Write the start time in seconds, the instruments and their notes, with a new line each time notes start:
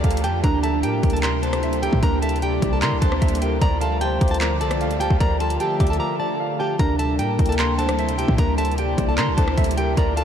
Already playing: analog synth pad D3 F3 A3 F4, nylon-string guitar A4 A5, clean electric guitar D5 D6
0.04 808-style bass D2, clean electric guitar F5, kick, closed hi-hat
0.11 closed hi-hat
0.17 closed hi-hat
0.24 808-style bass F2, nylon-string guitar G4 G5, clean electric guitar A5, closed hi-hat
0.44 808-style bass D2, analog synth pad C3 G3 A#3 E4, clean electric guitar D4, nylon-string guitar A#4 A#5, kick, closed hi-hat
0.63 nylon-string guitar A4 A5, clean electric guitar E5, closed hi-hat
0.83 808-style bass A2, nylon-string guitar G4 G5, soft synth lead A#4, clean electric guitar G5, closed hi-hat
1.03 808-style bass D2, kick, closed hi-hat
1.10 nylon-string guitar A5, closed hi-hat
1.14 nylon-string guitar A4, closed hi-hat
1.23 nylon-string guitar A#4 A#5, clean electric guitar C6, clap, closed hi-hat
1.43 clean electric guitar D4, nylon-string guitar A4 A5, soft synth lead C5, closed hi-hat
1.53 cross-stick, closed hi-hat
1.63 clean electric guitar E5, closed hi-hat
1.73 closed hi-hat
1.82 nylon-string guitar G4 G5, soft synth lead E5, clean electric guitar G5, closed hi-hat
1.93 808-style bass A2, kick
2.02 808-style bass D2, clean electric guitar D4, nylon-string guitar A#4 A#5, kick, closed hi-hat
2.22 nylon-string guitar A4 A5, clean electric guitar E5, closed hi-hat
2.29 closed hi-hat
2.36 closed hi-hat
2.42 nylon-string guitar G4 G5, soft synth lead D5, clean electric guitar G5, closed hi-hat
2.62 808-style bass C2, kick, closed hi-hat
2.73 nylon-string guitar A4 A5
2.82 808-style bass D3, nylon-string guitar A#4 A#5, clean electric guitar C6, clap, closed hi-hat
2.92 808-style bass C2
3.01 808-style bass D2, clean electric guitar D4, nylon-string guitar A4 A5, soft synth lead C5, kick, closed hi-hat
3.12 cross-stick
3.22 808-style bass D2, clean electric guitar E5, kick, closed hi-hat
3.28 closed hi-hat
3.35 closed hi-hat
3.42 nylon-string guitar G4 G5, soft synth lead A#4, clean electric guitar G5, closed hi-hat
3.62 808-style bass D2, analog synth pad D3 F3 A3 F4, nylon-string guitar A#4 A#5, clean electric guitar D5, kick, closed hi-hat
3.81 nylon-string guitar A4 A5, clean electric guitar F5, closed hi-hat
4.01 nylon-string guitar G4 G5, soft synth lead C5, clean electric guitar A5, closed hi-hat
4.21 808-style bass D2, clean electric guitar D6, kick, closed hi-hat
4.28 nylon-string guitar A5, closed hi-hat
4.32 nylon-string guitar A4, closed hi-hat
4.41 nylon-string guitar A#4 A#5, clean electric guitar D6, clap, closed hi-hat
4.60 808-style bass C2, nylon-string guitar A4 A5, soft synth lead D5, clean electric guitar D5, closed hi-hat
4.71 cross-stick, closed hi-hat
4.81 clean electric guitar F5, closed hi-hat
4.86 808-style bass D2
4.91 closed hi-hat
5.00 nylon-string guitar G4 G5, soft synth lead F5, clean electric guitar A5, closed hi-hat
5.10 808-style bass D2, kick
5.20 808-style bass D2, nylon-string guitar A#4 A#5, clean electric guitar D5, kick, closed hi-hat
5.40 clean electric guitar F4, nylon-string guitar A4 A5, closed hi-hat, open hi-hat
5.50 closed hi-hat
5.60 nylon-string guitar G4 G5, soft synth lead E5, clean electric guitar A5, closed hi-hat
5.80 808-style bass D2, clean electric guitar D6, kick, closed hi-hat
5.87 nylon-string guitar A5, closed hi-hat
5.91 nylon-string guitar A4, closed hi-hat
6.00 nylon-string guitar A#4 A#5, clean electric guitar D6
6.20 nylon-string guitar A4 A5, clean electric guitar D5, soft synth lead D5
6.40 clean electric guitar F5
6.59 nylon-string guitar G4 G5, clean electric guitar A5
6.79 808-style bass D2, analog synth pad C3 G3 A#3 E4, clean electric guitar D4, nylon-string guitar A#4 A#5, kick, closed hi-hat
6.99 nylon-string guitar A4 A5, clean electric guitar E5, closed hi-hat
7.19 808-style bass A2, nylon-string guitar G4 G5, soft synth lead A#4, clean electric guitar G5, closed hi-hat
7.39 808-style bass D2, kick, closed hi-hat
7.46 nylon-string guitar A5, closed hi-hat
7.50 nylon-string guitar A4, closed hi-hat
7.58 nylon-string guitar A#4 A#5, clean electric guitar C6, clap, closed hi-hat
7.78 clean electric guitar D4, nylon-string guitar A4 A5, soft synth lead C5, closed hi-hat
7.89 cross-stick, closed hi-hat
7.99 clean electric guitar E5, closed hi-hat
8.09 closed hi-hat
8.18 nylon-string guitar G4 G5, soft synth lead E5, clean electric guitar G5, closed hi-hat
8.28 808-style bass A2, kick
8.38 808-style bass D2, clean electric guitar D4, nylon-string guitar A#4 A#5, kick, closed hi-hat
8.58 nylon-string guitar A4 A5, clean electric guitar E5, closed hi-hat
8.65 closed hi-hat
8.71 closed hi-hat
8.78 nylon-string guitar G4 G5, soft synth lead D5, clean electric guitar G5, closed hi-hat
8.98 808-style bass C2, kick, closed hi-hat
9.09 nylon-string guitar A4 A5
9.18 808-style bass D3, nylon-string guitar A#4 A#5, clean electric guitar C6, clap, closed hi-hat
9.28 808-style bass C2
9.37 808-style bass D2, clean electric guitar D4, nylon-string guitar A4 A5, soft synth lead C5, kick, closed hi-hat
9.48 cross-stick
9.57 808-style bass D2, clean electric guitar E5, kick, closed hi-hat
9.64 closed hi-hat
9.71 closed hi-hat
9.77 nylon-string guitar G4 G5, soft synth lead A#4, clean electric guitar G5, closed hi-hat
9.97 808-style bass D2, analog synth pad D3 F3 A3 F4, nylon-string guitar A#4 A#5, clean electric guitar D5, kick, closed hi-hat
10.16 nylon-string guitar A4 A5, clean electric guitar F5, closed hi-hat